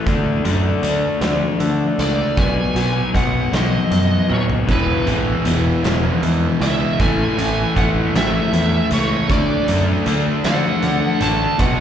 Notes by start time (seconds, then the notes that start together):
0.05 D2 D3 A3 D4 F#4, kick, closed hi-hat
0.44 F#2 D3 A3 D4 F#4, closed hi-hat
0.82 D2 D3 A3 D4 F#4, closed hi-hat
1.21 D2 D3 A3 D4 F#4, snare, closed hi-hat
1.60 D3 A3 D4 F#4, closed hi-hat
1.99 C#2 D3 A3 D4 D5, closed hi-hat
2.37 B1 B2 D#3 F#3 B3 F#4 G#5, kick, closed hi-hat
2.75 B1 B2 F#3 B3 F#4, closed hi-hat
3.13 B1 B2 D#3 F#3 B3 F#4 F#5, kick, closed hi-hat
3.53 B1 B2 D#3 F#3 B3 F#4 D#5, snare, closed hi-hat
3.91 F#2 D#3 F#3 B3 F#4, closed hi-hat
4.29 D#2 B2 F#3 B3, high tom
4.33 C#5
4.50 floor tom
4.66 E1 E2 B2 E3 G#3 B3, kick, closed hi-hat
4.71 E4 B4
5.06 A1 E2 B2 E3 G#3 B3 E4, closed hi-hat
5.45 E1 E2 B2 E3 G#3 B3 E4, closed hi-hat
5.84 E1 E2 B2 E3 G#3 B3 E4, snare, closed hi-hat
6.23 E2 E3 G#3 B3 E4, closed hi-hat
6.61 C#2 E2 B2 E3 E5, closed hi-hat
6.98 A1 A2 E3 A3 C#4 E4 G#5, kick, closed hi-hat
7.37 A1 A2 E3 A3 C#4 E4, closed hi-hat
7.75 A1 A2 E3 A3 C#4 E4 F#5, kick, closed hi-hat
8.14 A1 A2 E3 A3 C#4 E4 E5, snare, closed hi-hat
8.53 E2 E3 A3 C#4 E4, closed hi-hat
8.91 C#2 A2 E3 A3 C#5, closed hi-hat
9.29 D2 D3 F#3 A3 D4 D5, kick, closed hi-hat
9.67 F#2 D3 F#3 A3 D4, closed hi-hat
10.06 D2 D3 F#3 A3 D4, closed hi-hat
10.43 D2 D3 F#3 A3 D4 F#5, snare, closed hi-hat
10.82 D3 F#3 A3 D4, closed hi-hat
11.21 A1 D3 A3 D4 A5, closed hi-hat
11.58 B1 B2 F#3 B3 D#4 F#5, kick, closed hi-hat